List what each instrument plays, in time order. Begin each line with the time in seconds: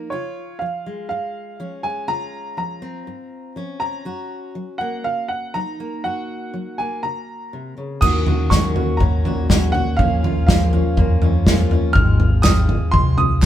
Already playing: steel-string acoustic guitar F4
0.10 steel-string acoustic guitar C#3 F4, upright piano C#5
0.59 steel-string acoustic guitar F3, upright piano F5
0.86 steel-string acoustic guitar G#3
1.09 steel-string acoustic guitar G#2, upright piano F5
1.60 steel-string acoustic guitar F3 C#4
1.83 steel-string acoustic guitar G#3, upright piano G#5
2.08 steel-string acoustic guitar C#3 F4, upright piano A#5
2.57 steel-string acoustic guitar F3, upright piano A#5
2.82 steel-string acoustic guitar C4
3.07 steel-string acoustic guitar G#2
3.56 steel-string acoustic guitar F3 C#4
3.80 steel-string acoustic guitar C4, upright piano A#5
4.05 steel-string acoustic guitar F#2 F#4
4.55 steel-string acoustic guitar F#3
4.78 steel-string acoustic guitar A#3, upright piano F#5
5.04 steel-string acoustic guitar C#3, upright piano F5
5.28 upright piano F#5
5.54 steel-string acoustic guitar F#3 D#4, upright piano A#5
5.80 steel-string acoustic guitar A#3
6.04 steel-string acoustic guitar F#2 F#4, upright piano F#5
6.54 steel-string acoustic guitar F#3
6.78 steel-string acoustic guitar A#3, upright piano G#5
7.03 steel-string acoustic guitar C#3, upright piano A#5
7.53 steel-string acoustic guitar C3
7.78 steel-string acoustic guitar C#3
8.01 upright bass D#2, steel-string acoustic guitar D#3 A#3 C#4 F#4, upright piano D#6, kick, floor tom, crash
8.26 steel-string acoustic guitar A#3 C#4 F#4, floor tom
8.50 steel-string acoustic guitar D#3 A#3 C#4 F#4, upright piano C#6, kick, snare, floor tom
8.75 steel-string acoustic guitar A#3 C#4 F#4, floor tom
8.97 upright bass A#1, steel-string acoustic guitar D#3 A#3 C#4, upright piano A#5, kick, floor tom
9.02 steel-string acoustic guitar C#4 F#4
9.25 steel-string acoustic guitar A#2 A#3 C#4 F#4, floor tom
9.49 steel-string acoustic guitar D#3 A#3 C#4 F#4, kick, snare, floor tom
9.72 steel-string acoustic guitar C#4 F#4, upright piano F#5, floor tom
9.77 steel-string acoustic guitar A#3
9.97 upright bass A#1, steel-string acoustic guitar A#2 F3 A#3 C#4 F4, upright piano F5, kick, floor tom
10.22 steel-string acoustic guitar A#3 C#4 F4, floor tom
10.47 steel-string acoustic guitar A#2 F3 A#3 C#4 F4, upright piano F5, kick, snare, floor tom
10.73 steel-string acoustic guitar A#3 C#4 F4, floor tom
10.97 upright bass F2, steel-string acoustic guitar F3 A#3 C#4 F4, kick, floor tom
11.21 steel-string acoustic guitar F2 A#3 C#4 F4, floor tom
11.46 steel-string acoustic guitar A#2 F3 A#3 C#4 F4, kick, snare, floor tom
11.70 steel-string acoustic guitar A#3 C#4 F4, floor tom
11.93 upright bass G#1, steel-string acoustic guitar G#2 D#3 F3 G#3 C4, upright piano F6, kick, floor tom
11.97 steel-string acoustic guitar F4
12.20 steel-string acoustic guitar F3 G#3 C4 F4, floor tom
12.42 steel-string acoustic guitar G#2 D#3 F3 G#3 C4 F4, upright piano D#6, kick, snare, clap, floor tom
12.69 steel-string acoustic guitar F3 G#3 C4 F4, floor tom
12.91 upright bass C2, steel-string acoustic guitar F3 G#3 C4 F4, upright piano C6, kick, floor tom
13.17 steel-string acoustic guitar F3 G#3 C4 F4, upright piano D#6, floor tom
13.41 steel-string acoustic guitar G#2 D#3 F3 G#3, clap